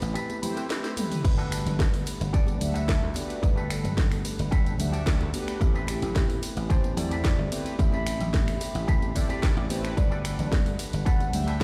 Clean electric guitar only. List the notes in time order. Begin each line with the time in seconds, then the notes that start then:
0.14 C4 G4 A4 B4
0.42 B5
0.55 C4 G4 A4 B4 G5
0.70 D5
0.84 E5
0.96 muted clean electric guitar stroke
1.23 muted clean electric guitar stroke
1.38 F#4 G4 A4 B4
2.05 muted clean electric guitar stroke
2.33 F#4 G4 A4 D5
2.74 F#4 G4 A4 B4
3.15 muted clean electric guitar stroke
3.42 muted clean electric guitar stroke
3.56 F#4 G4 A4 B4
4.24 muted clean electric guitar stroke
4.51 F#4 G4 A4 B4
4.92 F#4 G4 A4 D5
5.33 muted clean electric guitar stroke
5.59 muted clean electric guitar stroke
5.74 C4 G4 A4 B4
6.42 muted clean electric guitar stroke
6.69 C4 G4 A4 C5
7.11 C4 G4 A4 B4
7.51 muted clean electric guitar stroke
7.78 muted clean electric guitar stroke
7.93 C4 G4 A4 B4
8.60 muted clean electric guitar stroke
8.87 C4 G4 A4 B4
9.29 C4 G4 A4 B4
9.69 muted clean electric guitar stroke
9.96 muted clean electric guitar stroke
10.10 F#4 G4 A4 D5
10.78 muted clean electric guitar stroke
11.05 F#4 G4 A4 B4
11.46 F#4 G4 A4 B4